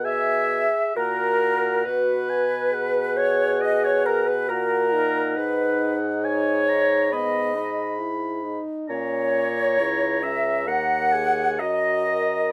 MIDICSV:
0, 0, Header, 1, 6, 480
1, 0, Start_track
1, 0, Key_signature, 5, "major"
1, 0, Tempo, 907716
1, 985, Time_signature, 4, 2, 24, 8
1, 985, Tempo, 873362
1, 3385, Tempo, 887574
1, 4825, Tempo, 891530
1, 5785, Tempo, 920245
1, 6748, End_track
2, 0, Start_track
2, 0, Title_t, "Oboe"
2, 0, Program_c, 0, 68
2, 27, Note_on_c, 0, 80, 71
2, 369, Note_off_c, 0, 80, 0
2, 513, Note_on_c, 0, 78, 72
2, 965, Note_off_c, 0, 78, 0
2, 988, Note_on_c, 0, 78, 74
2, 1224, Note_on_c, 0, 80, 76
2, 1232, Note_off_c, 0, 78, 0
2, 1466, Note_on_c, 0, 78, 76
2, 1474, Note_off_c, 0, 80, 0
2, 2431, Note_off_c, 0, 78, 0
2, 2434, Note_on_c, 0, 78, 76
2, 3394, Note_on_c, 0, 80, 76
2, 3402, Note_off_c, 0, 78, 0
2, 3634, Note_on_c, 0, 82, 78
2, 3642, Note_off_c, 0, 80, 0
2, 3868, Note_on_c, 0, 83, 84
2, 3876, Note_off_c, 0, 82, 0
2, 4103, Note_off_c, 0, 83, 0
2, 4106, Note_on_c, 0, 83, 67
2, 4671, Note_off_c, 0, 83, 0
2, 4821, Note_on_c, 0, 82, 83
2, 5762, Note_off_c, 0, 82, 0
2, 5780, Note_on_c, 0, 82, 79
2, 6017, Note_on_c, 0, 80, 72
2, 6025, Note_off_c, 0, 82, 0
2, 6263, Note_on_c, 0, 82, 70
2, 6271, Note_off_c, 0, 80, 0
2, 6748, Note_off_c, 0, 82, 0
2, 6748, End_track
3, 0, Start_track
3, 0, Title_t, "Clarinet"
3, 0, Program_c, 1, 71
3, 27, Note_on_c, 1, 76, 104
3, 489, Note_off_c, 1, 76, 0
3, 509, Note_on_c, 1, 70, 103
3, 982, Note_on_c, 1, 71, 100
3, 990, Note_off_c, 1, 70, 0
3, 1704, Note_on_c, 1, 73, 97
3, 1712, Note_off_c, 1, 71, 0
3, 1947, Note_on_c, 1, 75, 95
3, 1956, Note_off_c, 1, 73, 0
3, 2074, Note_on_c, 1, 73, 94
3, 2083, Note_off_c, 1, 75, 0
3, 2185, Note_off_c, 1, 73, 0
3, 2189, Note_on_c, 1, 70, 91
3, 2311, Note_on_c, 1, 71, 82
3, 2320, Note_off_c, 1, 70, 0
3, 2423, Note_off_c, 1, 71, 0
3, 2427, Note_on_c, 1, 70, 108
3, 2913, Note_on_c, 1, 71, 86
3, 2922, Note_off_c, 1, 70, 0
3, 3244, Note_off_c, 1, 71, 0
3, 3390, Note_on_c, 1, 73, 113
3, 3871, Note_on_c, 1, 75, 95
3, 3879, Note_off_c, 1, 73, 0
3, 4346, Note_off_c, 1, 75, 0
3, 4827, Note_on_c, 1, 73, 106
3, 5545, Note_on_c, 1, 76, 97
3, 5553, Note_off_c, 1, 73, 0
3, 5784, Note_on_c, 1, 78, 97
3, 5792, Note_off_c, 1, 76, 0
3, 6263, Note_on_c, 1, 75, 101
3, 6271, Note_off_c, 1, 78, 0
3, 6748, Note_off_c, 1, 75, 0
3, 6748, End_track
4, 0, Start_track
4, 0, Title_t, "Flute"
4, 0, Program_c, 2, 73
4, 36, Note_on_c, 2, 76, 93
4, 509, Note_on_c, 2, 70, 80
4, 517, Note_off_c, 2, 76, 0
4, 984, Note_off_c, 2, 70, 0
4, 987, Note_on_c, 2, 71, 84
4, 1702, Note_on_c, 2, 73, 78
4, 1711, Note_off_c, 2, 71, 0
4, 1943, Note_off_c, 2, 73, 0
4, 1949, Note_on_c, 2, 75, 94
4, 2075, Note_on_c, 2, 73, 82
4, 2083, Note_off_c, 2, 75, 0
4, 2192, Note_on_c, 2, 70, 74
4, 2200, Note_off_c, 2, 73, 0
4, 2313, Note_on_c, 2, 71, 81
4, 2321, Note_off_c, 2, 70, 0
4, 2434, Note_on_c, 2, 70, 95
4, 2442, Note_off_c, 2, 71, 0
4, 2912, Note_off_c, 2, 70, 0
4, 2919, Note_on_c, 2, 71, 70
4, 3241, Note_off_c, 2, 71, 0
4, 3390, Note_on_c, 2, 73, 93
4, 3874, Note_on_c, 2, 75, 86
4, 3882, Note_off_c, 2, 73, 0
4, 4347, Note_off_c, 2, 75, 0
4, 4830, Note_on_c, 2, 73, 85
4, 5546, Note_on_c, 2, 76, 78
4, 5555, Note_off_c, 2, 73, 0
4, 5792, Note_on_c, 2, 78, 89
4, 5800, Note_off_c, 2, 76, 0
4, 6266, Note_on_c, 2, 75, 96
4, 6274, Note_off_c, 2, 78, 0
4, 6743, Note_off_c, 2, 75, 0
4, 6748, End_track
5, 0, Start_track
5, 0, Title_t, "French horn"
5, 0, Program_c, 3, 60
5, 20, Note_on_c, 3, 68, 76
5, 500, Note_off_c, 3, 68, 0
5, 503, Note_on_c, 3, 66, 78
5, 972, Note_off_c, 3, 66, 0
5, 981, Note_on_c, 3, 66, 82
5, 1313, Note_off_c, 3, 66, 0
5, 1456, Note_on_c, 3, 68, 96
5, 2426, Note_on_c, 3, 66, 78
5, 2434, Note_off_c, 3, 68, 0
5, 2673, Note_on_c, 3, 63, 92
5, 2681, Note_off_c, 3, 66, 0
5, 3863, Note_off_c, 3, 63, 0
5, 3866, Note_on_c, 3, 59, 69
5, 4102, Note_on_c, 3, 63, 73
5, 4111, Note_off_c, 3, 59, 0
5, 4337, Note_on_c, 3, 64, 70
5, 4345, Note_off_c, 3, 63, 0
5, 4576, Note_on_c, 3, 63, 82
5, 4584, Note_off_c, 3, 64, 0
5, 4822, Note_on_c, 3, 61, 87
5, 4830, Note_off_c, 3, 63, 0
5, 5162, Note_off_c, 3, 61, 0
5, 5304, Note_on_c, 3, 64, 72
5, 5543, Note_on_c, 3, 61, 78
5, 5551, Note_off_c, 3, 64, 0
5, 5788, Note_on_c, 3, 70, 74
5, 5796, Note_off_c, 3, 61, 0
5, 6025, Note_on_c, 3, 68, 79
5, 6033, Note_off_c, 3, 70, 0
5, 6268, Note_on_c, 3, 66, 70
5, 6276, Note_off_c, 3, 68, 0
5, 6509, Note_off_c, 3, 66, 0
5, 6514, Note_on_c, 3, 70, 82
5, 6748, Note_off_c, 3, 70, 0
5, 6748, End_track
6, 0, Start_track
6, 0, Title_t, "Bassoon"
6, 0, Program_c, 4, 70
6, 0, Note_on_c, 4, 47, 81
6, 349, Note_off_c, 4, 47, 0
6, 512, Note_on_c, 4, 46, 69
6, 965, Note_off_c, 4, 46, 0
6, 985, Note_on_c, 4, 47, 73
6, 2434, Note_on_c, 4, 46, 71
6, 2442, Note_off_c, 4, 47, 0
6, 2909, Note_off_c, 4, 46, 0
6, 2913, Note_on_c, 4, 44, 86
6, 4662, Note_off_c, 4, 44, 0
6, 4827, Note_on_c, 4, 46, 81
6, 5308, Note_on_c, 4, 37, 74
6, 5316, Note_off_c, 4, 46, 0
6, 5784, Note_on_c, 4, 39, 83
6, 5792, Note_off_c, 4, 37, 0
6, 6265, Note_on_c, 4, 42, 73
6, 6273, Note_off_c, 4, 39, 0
6, 6742, Note_off_c, 4, 42, 0
6, 6748, End_track
0, 0, End_of_file